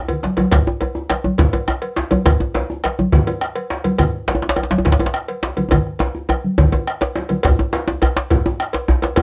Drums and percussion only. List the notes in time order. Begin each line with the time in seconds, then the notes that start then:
0.08 bombo rim, cowbell, djembe bass, low conga
0.23 bombo rim, djembe slap, high conga
0.37 cowbell, djembe slap, djembe tone, high conga
0.51 bombo rim, bombo low, cowbell, djembe slap, high conga, djembe bass, low conga
0.67 djembe slap, djembe tone
0.81 cowbell, djembe tone, high conga
0.95 djembe slap, djembe tone
1.09 bombo rim, cowbell, djembe slap, high conga
1.24 djembe tone, high conga
1.38 bombo low, cowbell, djembe slap, djembe bass, low conga
1.53 bombo rim, cowbell, djembe tone, high conga
1.68 bombo rim, djembe slap, djembe tone
1.82 cowbell, high conga
1.96 bombo rim, djembe slap
2.11 cowbell, djembe slap, djembe tone, high conga
2.25 bombo rim, bombo low, cowbell, djembe slap, high conga, low conga, djembe bass
2.40 djembe slap, djembe tone
2.54 cowbell, djembe slap, djembe tone, high conga
2.70 djembe slap, djembe tone
2.84 bombo rim, cowbell, djembe slap, high conga
2.99 djembe tone, high conga
3.12 bombo low, cowbell, djembe slap, low conga, djembe bass
3.27 bombo rim, cowbell, high conga, djembe tone
3.41 bombo rim, djembe slap
3.56 cowbell, high conga
3.70 bombo rim, djembe slap
3.84 cowbell, djembe slap, djembe tone, high conga
3.98 bombo rim, bombo low, cowbell, high conga, low conga, djembe bass
4.14 djembe slap
4.28 cowbell, djembe slap, high conga
4.35 djembe tone
4.42 djembe slap, djembe tone
4.49 djembe slap
4.56 bombo rim, cowbell, djembe slap, djembe tone, high conga
4.63 djembe slap
4.71 djembe slap, high conga
4.78 djembe tone
4.85 bombo low, cowbell, djembe slap, djembe bass, low conga
4.92 djembe slap
4.99 bombo rim, cowbell, djembe tone, high conga
5.06 djembe slap
5.14 bombo rim, djembe slap
5.28 cowbell, high conga
5.43 bombo rim, djembe slap
5.57 cowbell, djembe slap, djembe tone, high conga
5.71 bombo rim, bombo low, cowbell, djembe slap, djembe tone, djembe bass, low conga
5.87 bombo rim, djembe slap
5.99 cowbell, djembe slap, djembe tone
6.15 djembe slap, djembe tone
6.29 bombo rim, cowbell, djembe tone, high conga
6.44 high conga
6.58 bombo low, cowbell, djembe slap, djembe tone, high conga, low conga, djembe bass
6.72 cowbell, djembe slap, djembe tone
6.87 bombo rim, djembe slap
7.01 cowbell, djembe slap
7.16 djembe slap, high conga
7.29 bombo rim, cowbell, djembe tone, high conga
7.43 bombo rim, bombo low, cowbell, djembe tone, djembe bass
7.59 djembe slap, djembe tone
7.73 cowbell, djembe slap
7.88 djembe slap, djembe tone
8.02 bombo rim, cowbell, djembe bass
8.17 djembe slap
8.30 bombo low, cowbell, djembe slap, djembe tone, djembe bass
8.46 bombo rim, djembe tone
8.60 bombo rim, djembe slap
8.73 cowbell, djembe slap
8.88 bombo rim, djembe slap, djembe bass
9.02 cowbell, djembe slap, djembe tone
9.16 bombo rim, bombo low, cowbell, djembe tone, djembe bass